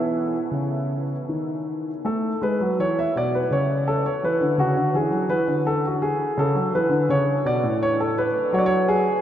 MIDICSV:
0, 0, Header, 1, 2, 480
1, 0, Start_track
1, 0, Key_signature, 3, "major"
1, 0, Tempo, 784314
1, 787, Tempo, 747198
1, 1277, Time_signature, 3, 2, 24, 8
1, 1747, Tempo, 717703
1, 6050, End_track
2, 0, Start_track
2, 0, Title_t, "Grand piano"
2, 0, Program_c, 0, 0
2, 0, Note_on_c, 0, 52, 47
2, 0, Note_on_c, 0, 59, 34
2, 0, Note_on_c, 0, 64, 65
2, 216, Note_off_c, 0, 52, 0
2, 314, Note_on_c, 0, 49, 45
2, 651, Note_off_c, 0, 64, 0
2, 693, Note_off_c, 0, 49, 0
2, 788, Note_on_c, 0, 51, 45
2, 1179, Note_off_c, 0, 51, 0
2, 1252, Note_off_c, 0, 59, 0
2, 1275, Note_on_c, 0, 57, 55
2, 1281, Note_on_c, 0, 69, 71
2, 1446, Note_off_c, 0, 57, 0
2, 1513, Note_on_c, 0, 56, 54
2, 1515, Note_off_c, 0, 69, 0
2, 1521, Note_on_c, 0, 71, 72
2, 1624, Note_off_c, 0, 56, 0
2, 1634, Note_on_c, 0, 54, 53
2, 1717, Note_off_c, 0, 71, 0
2, 1744, Note_off_c, 0, 54, 0
2, 1755, Note_on_c, 0, 52, 54
2, 1761, Note_on_c, 0, 73, 79
2, 1876, Note_off_c, 0, 73, 0
2, 1886, Note_on_c, 0, 76, 74
2, 1927, Note_off_c, 0, 52, 0
2, 1998, Note_on_c, 0, 47, 53
2, 1999, Note_off_c, 0, 76, 0
2, 2010, Note_on_c, 0, 74, 76
2, 2121, Note_off_c, 0, 74, 0
2, 2126, Note_on_c, 0, 71, 62
2, 2169, Note_off_c, 0, 47, 0
2, 2233, Note_on_c, 0, 49, 49
2, 2239, Note_off_c, 0, 71, 0
2, 2245, Note_on_c, 0, 73, 72
2, 2479, Note_on_c, 0, 69, 73
2, 2480, Note_off_c, 0, 73, 0
2, 2581, Note_off_c, 0, 49, 0
2, 2598, Note_off_c, 0, 69, 0
2, 2603, Note_on_c, 0, 73, 68
2, 2718, Note_on_c, 0, 52, 56
2, 2720, Note_off_c, 0, 73, 0
2, 2726, Note_on_c, 0, 71, 74
2, 2832, Note_off_c, 0, 52, 0
2, 2836, Note_on_c, 0, 50, 50
2, 2926, Note_off_c, 0, 71, 0
2, 2949, Note_on_c, 0, 49, 54
2, 2950, Note_off_c, 0, 50, 0
2, 2960, Note_on_c, 0, 66, 77
2, 3065, Note_off_c, 0, 49, 0
2, 3072, Note_on_c, 0, 50, 51
2, 3186, Note_off_c, 0, 50, 0
2, 3191, Note_on_c, 0, 52, 56
2, 3196, Note_off_c, 0, 66, 0
2, 3202, Note_on_c, 0, 68, 63
2, 3301, Note_on_c, 0, 54, 50
2, 3305, Note_off_c, 0, 52, 0
2, 3420, Note_off_c, 0, 54, 0
2, 3423, Note_on_c, 0, 52, 53
2, 3429, Note_on_c, 0, 71, 81
2, 3437, Note_off_c, 0, 68, 0
2, 3542, Note_off_c, 0, 52, 0
2, 3550, Note_on_c, 0, 50, 53
2, 3635, Note_off_c, 0, 71, 0
2, 3677, Note_on_c, 0, 69, 78
2, 3795, Note_off_c, 0, 69, 0
2, 3811, Note_on_c, 0, 66, 61
2, 3914, Note_on_c, 0, 68, 73
2, 3922, Note_off_c, 0, 66, 0
2, 3984, Note_off_c, 0, 50, 0
2, 4151, Note_on_c, 0, 49, 66
2, 4154, Note_off_c, 0, 68, 0
2, 4161, Note_on_c, 0, 69, 79
2, 4266, Note_off_c, 0, 49, 0
2, 4266, Note_on_c, 0, 54, 57
2, 4384, Note_off_c, 0, 54, 0
2, 4389, Note_on_c, 0, 52, 58
2, 4398, Note_off_c, 0, 69, 0
2, 4401, Note_on_c, 0, 71, 74
2, 4497, Note_on_c, 0, 50, 62
2, 4505, Note_off_c, 0, 52, 0
2, 4601, Note_off_c, 0, 71, 0
2, 4619, Note_off_c, 0, 50, 0
2, 4631, Note_on_c, 0, 49, 61
2, 4639, Note_on_c, 0, 73, 77
2, 4803, Note_off_c, 0, 49, 0
2, 4869, Note_on_c, 0, 47, 59
2, 4874, Note_off_c, 0, 73, 0
2, 4880, Note_on_c, 0, 74, 80
2, 4983, Note_off_c, 0, 47, 0
2, 4993, Note_on_c, 0, 45, 56
2, 5078, Note_off_c, 0, 74, 0
2, 5121, Note_on_c, 0, 73, 85
2, 5233, Note_off_c, 0, 73, 0
2, 5241, Note_on_c, 0, 69, 70
2, 5353, Note_off_c, 0, 69, 0
2, 5359, Note_on_c, 0, 71, 75
2, 5421, Note_off_c, 0, 45, 0
2, 5590, Note_on_c, 0, 54, 71
2, 5592, Note_off_c, 0, 71, 0
2, 5602, Note_on_c, 0, 73, 82
2, 5630, Note_on_c, 0, 74, 73
2, 5639, Note_off_c, 0, 73, 0
2, 5676, Note_off_c, 0, 74, 0
2, 5680, Note_on_c, 0, 73, 91
2, 5806, Note_off_c, 0, 73, 0
2, 5829, Note_on_c, 0, 68, 81
2, 5934, Note_off_c, 0, 54, 0
2, 6050, Note_off_c, 0, 68, 0
2, 6050, End_track
0, 0, End_of_file